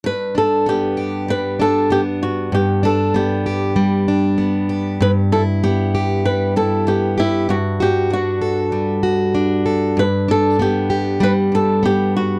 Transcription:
<<
  \new Staff \with { instrumentName = "Nylon-string guitar" } { \time 4/4 \key g \major \tempo 4 = 97 b'8 a'8 g'4 b'8 a'8 g'8 fis'8 | g'8 a'8 g'2 r4 | b'8 a'8 g'4 b'8 a'8 g'8 e'8 | fis'8 g'8 fis'2 r4 |
b'8 a'8 g'4 b'8 a'8 g'8 fis'8 | }
  \new Staff \with { instrumentName = "Steel-string acoustic guitar" } { \time 4/4 \key g \major g,8 d'8 b8 g'8 g8 d'8 b4 | g,8 d'8 b8 g'8 g8 d'8 b8 g'8 | g,8 e'8 b8 g'8 g8 e'8 b8 g'8 | g,8 fis'8 d'8 a'8 g8 fis'8 d'8 a'8 |
g,8 d'8 b8 g'8 g8 d'8 b4 | }
>>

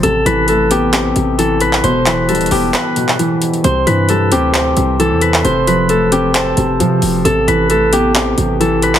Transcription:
<<
  \new Staff \with { instrumentName = "Harp" } { \time 4/4 \key a \minor \tempo 4 = 133 a'8 b'8 a'8 g'8 g'4 a'8 b'8 | c''8 b'8 a'8 g'8 b'2 | c''8 b'8 a'8 g'8 g'4 a'8 b'8 | c''8 b'8 a'8 g'8 a'2 |
a'8 b'8 a'8 g'8 g'4 a'8 b'8 | }
  \new Staff \with { instrumentName = "Grand piano" } { \clef bass \time 4/4 \key a \minor c8 e8 a8 b8 c'8 c8 e4 | b,8 e8 g8 b8 b'8 b,8 e4 | c8 e8 g8 c'8 c''8 c8 e4 | c8 f8 a8 c'8 c''8 c8 f4 |
c8 e8 a8 b8 c'8 c8 e4 | }
  \new Staff \with { instrumentName = "808-style bass" } { \clef bass \time 4/4 \key a \minor a,,8 a,,2 a,,4. | e,,4 d,,16 e,,16 e,,8 r2 | c,8 g,4 d,4 c,8. e,8. | f,,2~ f,,8 f,,8 c8 f,,8 |
a,,8 a,,2 a,,4. | }
  \new DrumStaff \with { instrumentName = "Drums" } \drummode { \time 4/4 hh8 hh8 hh8 hh8 <hc hh>8 hh8 hh8 hh16 hc16 | hh8 <hc hh>8 hh32 hh32 hh32 hh32 hho8 <hc hh>8 hh16 hc16 hh8 hh16 hh16 | hh8 hh8 hh8 hh8 <hc hh>8 hh8 hh8 hh16 hc16 | hh8 hh8 hh8 hh8 <hc hh>8 hh8 hh8 hho8 |
hh8 hh8 hh8 hh8 <hc hh>8 hh8 hh8 hh16 hc16 | }
>>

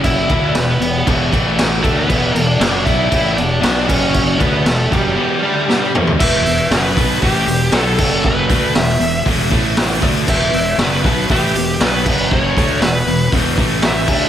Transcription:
<<
  \new Staff \with { instrumentName = "Lead electric guitar" } { \time 4/4 \key e \minor \tempo 4 = 118 <e' e''>4 <b b'>4 r4. <a a'>16 <b b'>16~ | <b b'>8. <d' d''>8. <e' e''>4 <d' d''>4 <cis' cis''>8~ | <cis' cis''>8 <b b'>8 <a a'>8 <g g'>2 r8 | e''4 b'4 g'4 a'4 |
b'4 e''4 r2 | e''4 b'4 g'4 b'4 | cis''4 b'4 r4 e''4 | }
  \new Staff \with { instrumentName = "Distorted electric guitar" } { \clef bass \time 4/4 \key e \minor <fis, cis fis>8 <d a d'>8 <e, b,>8 <e, b,>8 <e, b, e>8 <a, e a>4 <d a d'>8 | <e, b, e>8 <e, b,>8 <fis, cis fis>8 <b, fis b>8 <a, e a>8 <e, b,>8 <b, fis b>8 <fis, cis fis>8~ | <fis, cis fis>8 <d a d'>8 <e, b,>8 <fis, cis fis>8 <e, b, e>8 <d a d'>8 <g, d g>8 <e, b, e>8 | <e, b, e>8 <e, b,>8 <fis, cis fis>8 <b, fis b>8 <a, e a>8 <e, b,>8 <b, fis b>8 <fis, cis fis>8~ |
<fis, cis fis>8 <d a d'>8 <e, b,>8 <e, b,>8 <e, b, e>8 <a, e a>4 <d a d'>8 | <e, b, e>8 <e, b,>8 <fis, cis fis>8 <b, fis b>8 <a, e a>8 <e, b,>8 <b, fis b>8 <fis, cis fis>8~ | <fis, cis fis>8 <d a d'>8 <e, b,>8 <e, b,>8 <e, b, e>8 <a, e a>4 <d a d'>8 | }
  \new Staff \with { instrumentName = "Fingered electric bass" } { \clef bass \time 4/4 \key e \minor fis,,8 d,8 e,,8 e,,8 e,,8 a,,4 d,8 | e,,8 e,,8 fis,,8 b,,8 a,,8 e,,8 b,,8 fis,,8~ | fis,,8 d,8 e,,8 fis,,8 r2 | e,,8 e,,8 fis,,8 b,,8 a,,8 e,,8 b,,8 fis,,8~ |
fis,,8 d,8 e,,8 e,,8 e,,8 a,,4 d,8 | e,,8 e,,8 fis,,8 b,,8 a,,8 e,,8 b,,8 fis,,8~ | fis,,8 d,8 e,,8 e,,8 e,,8 a,,4 d,8 | }
  \new DrumStaff \with { instrumentName = "Drums" } \drummode { \time 4/4 <cymc bd>8 <cymc bd>8 <cymc sn>8 cymc8 <cymc bd>8 <cymc bd>8 <cymc sn>8 <cymc bd>8 | <cymc bd>8 cymc8 <cymc sn>8 <cymc bd>8 <cymc bd>8 cymc8 <cymc sn>8 <cymc bd>8 | <cymc bd>8 <cymc bd>8 <cymc sn>8 <cymc bd>8 r4 sn8 toml16 tomfh16 | <cymc bd>8 hho8 <hho sn>8 <hho bd>8 <hho bd>8 hho8 <hho sn>8 <cymc bd>8 |
bd8 <hho bd>8 <hho sn>16 sn16 hho8 <hho bd>8 <hho bd>8 <hho sn>8 <hho bd>8 | <cymc bd>8 hho8 <hho sn>16 sn16 <hho bd>8 <hho bd>8 hho8 <hho sn>8 <cymc bd>8 | bd8 <hho bd>8 <hho sn>8 hho8 <hho bd>8 <hho bd>8 <hho sn>8 <cymc bd>8 | }
>>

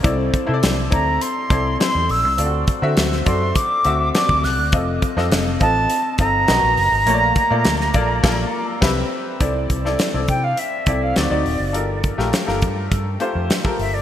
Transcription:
<<
  \new Staff \with { instrumentName = "Flute" } { \time 4/4 \key c \mixolydian \tempo 4 = 103 r4. bes''8 c'''4 c'''8 e'''8 | r4. c'''8 d'''4 d'''8 fis'''8 | r4. a''4 bes''4.~ | bes''2. r4 |
\key c \major r4. g''16 f''16 e''8. f''16 d''4~ | d''8 r2. e''16 d''16 | }
  \new Staff \with { instrumentName = "Grand piano" } { \time 4/4 \key c \mixolydian <c' e' a' d''>8. <c' e' a' c'' d''>8. <c' e' a' d''>4 <c' e' a' d''>8 <c' e' a' c''>4 | <c' f' fis' a' d''>8. <c' fis' a' e''>8. <c' fis' a' d''>4 <c' fis' a' e''>8 <c' fis' a' d''>4 | <c' f' a' ees''>8. <c' f' a' ees''>8. <c' f' a' ees''>4 <c' f' a' ees''>8 <b fis' ais' dis''>4 | <a bes f' des'' d''>8. <a bes f' d''>8. <bes f' a' d''>8 <bes f' a' d''>8 r8 <c' g' b' e''>8 r8 |
\key c \major <c' e' a' d''>8. <c' e' a' d''>8 <c' e' a' d''>4~ <c' e' a' d''>16 <c' e' a' d''>8 <c' ees' fis' d''>16 <c' ees' fis' d''>8. | <f' g' a' bes'>8. <a f' g' bes'>8 <f' g' a' bes'>4~ <f' g' a' bes'>16 <a f' g' c''>8. <f' g' a' bes'>8. | }
  \new Staff \with { instrumentName = "Fingered electric bass" } { \clef bass \time 4/4 \key c \mixolydian c,8 r16 c16 c,8 d,8 r8 c,8 r16 e,16 bes,,16 c,16 | d,8 r16 d16 d,8 fis,8 r8 d,8 r16 d,16 c,16 d,16 | f,,8 r16 f,16 f,,8 a,,8 r8 g,,8 b,,16 ais,,16 fis,,16 aes,,16 | bes,,8 r16 bes,16 d,8 bes,,8 bes,,8 r8 c,8 r8 |
\key c \major c,8 c,8 r16 c,16 c8 r8 c,8 d,16 d,16 ees,,16 fis,,16 | g,,8. bes,,16 r16 g,,16 g,8 g,8 r16 f,16 r8 g,,8 | }
  \new DrumStaff \with { instrumentName = "Drums" } \drummode { \time 4/4 <hh bd>8 <hh bd>8 <hh sn>8 <hh bd>8 hh8 <hh bd>8 <hh sn>8 hho8 | hh8 <hh bd>8 <hh sn>16 sn16 <hh bd>8 <hh bd>8 hh8 <hh sn>16 bd16 <hho sn>8 | <hh bd>8 <hh bd>16 sn16 <hh sn>8 <hh bd>8 hh8 <hh bd>8 <hh sn>8 hho8 | hh8 <hh bd>8 <hh sn>16 sn16 <hh bd>8 <cymc bd sn>4 <cymc bd sn>4 |
<hh bd>8 <hh bd>16 sn16 <hh sn>8 <hh bd>8 hh8 <hh bd>8 <hh sn>8 hho8 | hh8 <hh bd>16 sn16 <hh sn>16 sn16 <hh bd>8 <hh bd>8 hh8 <hh sn>16 bd16 hho8 | }
>>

